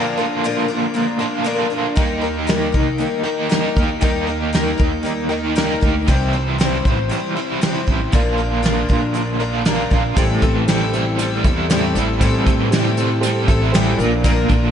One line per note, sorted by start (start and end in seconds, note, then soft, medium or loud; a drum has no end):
0.00 0.17 A#2 medium
0.00 0.17 D3 medium
0.00 0.18 F3 medium
0.00 0.18 A#3 medium
0.00 0.17 D4 medium
0.00 1.18 F4 medium
0.00 0.16 A#4 medium
0.17 0.44 F3 soft
0.17 0.44 A#3 soft
0.17 0.44 D4 soft
0.17 0.43 A#4 medium
0.44 0.69 A#2 medium
0.44 0.69 D3 medium
0.44 0.70 F3 medium
0.44 0.69 A#3 medium
0.44 0.69 D4 medium
0.44 0.67 A#4 medium
0.68 0.93 F3 soft
0.68 0.93 A#3 soft
0.68 0.95 D4 medium
0.68 0.94 A#4 medium
0.94 1.20 F3 medium
0.94 1.20 A#3 medium
0.94 1.19 D4 medium
0.94 1.18 A#4 medium
1.19 1.44 D3 medium
1.19 1.45 F3 soft
1.19 1.45 A#3 soft
1.19 1.45 D4 soft
1.19 1.44 F4 medium
1.19 1.45 A#4 medium
1.23 1.43 A#2 medium
1.44 1.71 A#2 medium
1.44 1.71 D3 medium
1.44 1.71 F3 medium
1.44 1.71 A#3 medium
1.44 1.70 D4 medium
1.44 1.69 A#4 medium
1.48 1.97 F4 medium
1.70 1.96 F3 soft
1.70 1.96 A#3 soft
1.70 1.97 D4 soft
1.70 1.96 A#4 medium
1.96 2.70 D#2 medium
1.96 2.22 D#3 medium
1.96 2.22 G3 medium
1.96 2.23 A#3 medium
1.96 2.22 D#4 medium
1.96 2.20 A#4 medium
1.96 kick loud
1.96 closed hi-hat soft
2.00 3.23 G4 medium
2.22 2.47 A#3 soft
2.22 2.47 D#4 soft
2.22 2.47 A#4 soft
2.47 2.73 D#3 medium
2.47 2.74 G3 medium
2.47 2.74 A#3 medium
2.47 2.73 D#4 medium
2.47 2.71 A#4 medium
2.47 snare loud
2.47 closed hi-hat soft
2.72 2.99 C2 medium
2.72 2.98 A#3 soft
2.72 2.99 D#4 medium
2.72 2.99 A#4 medium
2.72 kick medium
2.98 3.25 G3 medium
2.98 3.25 A#3 medium
2.98 3.24 D#4 medium
2.98 3.22 A#4 medium
2.98 closed hi-hat medium
3.24 3.48 D#3 medium
3.24 3.50 A#3 soft
3.24 3.50 D#4 medium
3.24 3.53 G4 medium
3.24 3.50 A#4 medium
3.49 3.76 D#3 medium
3.49 3.76 G3 medium
3.49 3.77 A#3 medium
3.49 3.77 D#4 medium
3.49 4.05 G4 medium
3.49 3.75 A#4 medium
3.49 snare loud
3.49 closed hi-hat medium
3.76 4.01 D#2 medium
3.76 4.00 A#3 soft
3.76 4.01 D#4 soft
3.76 4.01 A#4 soft
3.76 kick medium
4.01 4.75 D#2 medium
4.01 4.27 D#3 medium
4.01 4.27 G3 medium
4.01 4.28 A#3 medium
4.01 4.28 D#4 medium
4.01 4.26 A#4 medium
4.01 kick loud
4.01 closed hi-hat medium
4.05 5.29 G4 medium
4.27 4.53 A#3 soft
4.27 4.53 D#4 soft
4.27 4.53 A#4 medium
4.53 4.79 D#3 medium
4.53 4.79 G3 medium
4.53 4.79 A#3 medium
4.53 4.78 D#4 medium
4.53 4.77 A#4 medium
4.53 snare loud
4.53 closed hi-hat medium
4.78 5.78 D#2 medium
4.78 5.03 A#3 soft
4.78 5.04 D#4 medium
4.78 5.04 A#4 medium
4.78 kick medium
5.03 5.29 G3 medium
5.03 5.30 A#3 medium
5.03 5.29 D#4 medium
5.03 5.28 A#4 medium
5.03 closed hi-hat medium
5.29 5.55 A#3 soft
5.29 5.55 D#4 soft
5.29 5.54 G4 medium
5.29 5.55 A#4 medium
5.34 5.54 D#3 medium
5.55 5.81 D#3 medium
5.55 5.82 G3 medium
5.55 5.82 A#3 medium
5.55 5.82 D#4 medium
5.55 5.80 A#4 medium
5.55 snare loud
5.55 closed hi-hat medium
5.60 6.08 G4 medium
5.81 6.07 D2 medium
5.81 6.08 A#3 soft
5.81 6.08 D#4 soft
5.81 6.07 A#4 medium
5.81 kick medium
6.07 6.81 C2 medium
6.07 6.33 C3 medium
6.07 7.34 E3 medium
6.07 6.34 G3 medium
6.07 6.34 C4 medium
6.07 6.33 E4 medium
6.07 6.32 C5 medium
6.07 kick loud
6.07 closed hi-hat soft
6.33 6.59 C4 soft
6.33 6.59 E4 soft
6.33 6.59 C5 medium
6.58 6.84 C3 medium
6.58 6.85 G3 medium
6.58 6.85 C4 medium
6.58 6.85 E4 medium
6.58 6.84 C5 medium
6.58 snare loud
6.58 closed hi-hat medium
6.85 7.09 A1 medium
6.85 7.10 C4 soft
6.85 7.10 E4 medium
6.85 7.10 C5 medium
6.85 kick medium
7.09 7.35 G3 medium
7.09 7.36 C4 medium
7.09 7.36 E4 medium
7.09 7.35 C5 medium
7.09 closed hi-hat medium
7.37 7.59 C3 medium
7.37 7.60 E3 medium
7.37 7.61 G3 medium
7.37 7.61 C4 medium
7.37 7.62 E4 soft
7.37 7.62 C5 medium
7.61 7.87 C3 medium
7.61 8.11 E3 medium
7.61 7.87 G3 medium
7.61 7.88 C4 medium
7.61 7.87 E4 medium
7.61 7.86 C5 medium
7.61 snare loud
7.61 closed hi-hat medium
7.87 8.12 A1 medium
7.87 8.13 C4 soft
7.87 8.13 E4 soft
7.87 8.12 C5 medium
7.87 kick medium
8.12 8.86 A#1 medium
8.12 8.38 A#2 medium
8.12 8.38 D3 medium
8.12 8.38 F3 medium
8.12 8.39 A#3 medium
8.12 8.38 D4 medium
8.12 9.39 F4 medium
8.12 8.37 A#4 medium
8.12 kick loud
8.12 closed hi-hat medium
8.38 8.62 F3 soft
8.38 8.63 A#3 soft
8.38 8.63 D4 soft
8.38 8.63 A#4 soft
8.63 8.89 A#2 medium
8.63 8.89 D3 medium
8.63 8.89 F3 medium
8.63 8.89 A#3 medium
8.63 8.88 D4 medium
8.63 8.87 A#4 medium
8.63 snare loud
8.63 closed hi-hat medium
8.89 9.88 A#1 medium
8.89 9.13 F3 soft
8.89 9.14 A#3 soft
8.89 9.15 D4 medium
8.89 9.15 A#4 medium
8.89 kick medium
9.14 9.40 F3 medium
9.14 9.40 A#3 medium
9.14 9.39 D4 medium
9.14 9.39 A#4 medium
9.14 closed hi-hat medium
9.40 9.64 A#2 medium
9.40 9.65 D3 medium
9.40 9.65 F3 soft
9.40 9.66 A#3 soft
9.40 9.66 D4 soft
9.40 9.64 F4 medium
9.40 9.66 A#4 medium
9.65 9.91 A#2 medium
9.65 9.92 D3 medium
9.65 9.92 F3 medium
9.65 9.91 A#3 medium
9.65 9.91 D4 medium
9.65 10.17 F4 medium
9.65 9.89 A#4 medium
9.65 snare loud
9.65 closed hi-hat medium
9.91 10.16 A#1 medium
9.91 10.17 F3 soft
9.91 10.17 A#3 soft
9.91 10.17 D4 soft
9.91 10.17 A#4 soft
9.91 kick medium
10.16 10.41 A1 medium
10.16 10.42 A2 medium
10.16 10.43 E3 medium
10.16 10.43 G3 medium
10.16 13.95 C4 medium
10.16 10.43 C4 medium
10.16 13.94 E4 medium
10.16 10.42 E4 medium
10.16 13.94 G4 medium
10.16 10.56 G4 medium
10.16 13.94 A4 medium
10.16 10.56 A4 medium
10.16 10.41 A4 medium
10.16 10.56 C5 medium
10.16 kick loud
10.16 closed hi-hat medium
10.42 11.46 A1 medium
10.42 11.70 E3 medium
10.42 10.67 G3 soft
10.42 10.68 C4 soft
10.42 10.68 E4 medium
10.42 10.68 A4 medium
10.42 kick medium
10.42 closed hi-hat medium
10.67 10.93 A2 medium
10.67 10.94 E3 medium
10.67 10.94 G3 medium
10.67 10.94 C4 medium
10.67 10.93 E4 medium
10.67 11.06 G4 medium
10.67 11.06 A4 medium
10.67 10.92 A4 medium
10.67 11.06 C5 medium
10.67 snare loud
10.67 closed hi-hat medium
10.93 11.18 G3 soft
10.93 11.19 C4 medium
10.93 11.19 E4 medium
10.93 11.19 A4 medium
10.93 closed hi-hat medium
11.18 11.45 G3 medium
11.18 11.45 C4 medium
11.18 11.44 E4 medium
11.18 11.57 G4 medium
11.18 11.57 A4 medium
11.18 11.43 A4 medium
11.18 11.57 C5 medium
11.18 closed hi-hat medium
11.44 11.93 E2 medium
11.44 11.69 G3 soft
11.44 11.70 C4 medium
11.44 11.71 E4 medium
11.44 11.70 A4 medium
11.44 kick medium
11.44 closed hi-hat medium
11.69 11.95 A2 medium
11.69 11.96 E3 medium
11.69 11.96 G3 medium
11.69 11.96 C4 medium
11.69 11.95 E4 medium
11.69 12.07 G4 medium
11.69 12.08 A4 medium
11.69 11.94 A4 medium
11.69 12.08 D5 medium
11.69 snare loud
11.69 closed hi-hat medium
11.94 12.19 A1 medium
11.94 12.70 G3 medium
11.94 12.21 C4 soft
11.94 12.21 E4 soft
11.94 12.21 A4 medium
11.94 closed hi-hat medium
11.98 12.20 G3 soft
12.20 12.46 A2 medium
12.20 12.45 A2 medium
12.20 12.47 E3 medium
12.20 12.47 G3 medium
12.20 12.47 C4 medium
12.20 12.47 E4 medium
12.20 12.59 G4 medium
12.20 12.59 A4 medium
12.20 12.45 A4 loud
12.20 12.59 C5 medium
12.20 kick loud
12.20 closed hi-hat medium
12.46 13.44 A2 medium
12.46 13.73 E3 medium
12.46 12.72 C4 soft
12.46 12.73 E4 soft
12.46 12.72 A4 medium
12.46 kick medium
12.46 closed hi-hat medium
12.50 12.71 G3 soft
12.71 12.97 A2 medium
12.71 12.97 E3 medium
12.71 12.98 G3 medium
12.71 12.98 C4 medium
12.71 12.98 E4 medium
12.71 13.09 G4 medium
12.71 13.10 A4 medium
12.71 12.96 A4 medium
12.71 13.10 C5 medium
12.71 snare loud
12.71 closed hi-hat medium
12.97 13.22 G3 medium
12.97 13.24 C4 medium
12.97 13.24 E4 medium
12.97 13.23 A4 medium
12.97 closed hi-hat medium
13.21 13.48 G3 medium
13.21 13.49 C4 medium
13.21 13.60 G4 medium
13.21 13.60 A4 medium
13.21 13.60 C5 medium
13.21 closed hi-hat loud
13.25 13.49 E4 medium
13.25 13.48 A4 medium
13.48 13.96 A1 medium
13.48 13.74 G3 medium
13.48 13.75 C4 medium
13.48 13.74 E4 medium
13.48 13.74 A4 medium
13.48 kick medium
13.48 closed hi-hat medium
13.72 13.99 A2 medium
13.72 13.99 E3 medium
13.72 13.99 G3 medium
13.72 14.00 C4 medium
13.72 14.00 E4 medium
13.72 13.98 G4 medium
13.72 13.98 A4 medium
13.72 13.98 C5 medium
13.72 snare loud
13.72 closed hi-hat medium
13.76 13.99 A4 medium
13.97 14.47 A#1 loud
13.97 14.23 A#2 medium
13.97 14.71 A#3 medium
13.97 14.71 D4 medium
13.97 14.24 D4 medium
13.97 14.59 F4 medium
13.97 14.71 F4 medium
13.97 14.59 A#4 medium
13.97 14.71 A#4 medium
13.97 14.24 A#4 medium
13.97 14.59 D5 medium
13.97 closed hi-hat medium
14.02 14.24 F3 soft
14.02 14.24 A#3 soft
14.24 14.49 A#2 medium
14.24 14.49 D3 medium
14.24 14.50 F3 medium
14.24 14.50 A#3 medium
14.24 14.50 D4 medium
14.24 14.48 A#4 loud
14.24 kick loud
14.24 closed hi-hat medium
14.48 14.71 A#1 loud
14.48 14.71 D3 medium
14.48 14.71 A#3 soft
14.48 14.71 D4 medium
14.48 14.71 A#4 medium
14.48 kick medium
14.48 closed hi-hat medium
14.53 14.71 F3 soft